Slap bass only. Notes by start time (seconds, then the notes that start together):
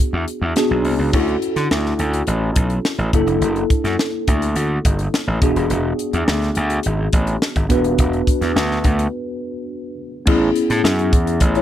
0.13 E2
0.42 E2
0.71 B1
0.84 C2
0.99 C#2
1.13 D2
1.56 D3
1.71 D2
1.99 D2
2.27 A1
2.56 B1
2.98 A1
3.13 F#1
3.26 F1
3.41 F#1
3.84 F#2
4.28 D2
4.55 D2
4.85 G1
5.27 A1
5.42 E1
5.56 D#1
5.70 E1
6.13 E2
6.28 D2
6.57 D2
6.86 G#1
7.13 A1
7.56 G#1
7.70 E1
7.85 D#1
7.99 E1
8.41 E2
8.56 D2
8.84 D2
10.27 A1
10.70 A2
10.84 F#2
11.13 E2
11.41 A1